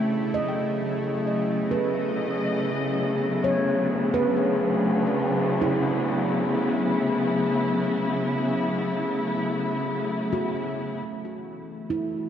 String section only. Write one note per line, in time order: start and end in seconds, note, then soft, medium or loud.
0.02 11.09 C#3 medium
0.37 11.08 F#3 medium
1.52 12.29 B3 medium
1.67 3.70 D#5 medium
3.69 7.39 D2 medium
5.36 12.29 E4 medium
11.11 12.29 B2 medium
11.65 12.29 A3 medium
11.89 12.29 E3 medium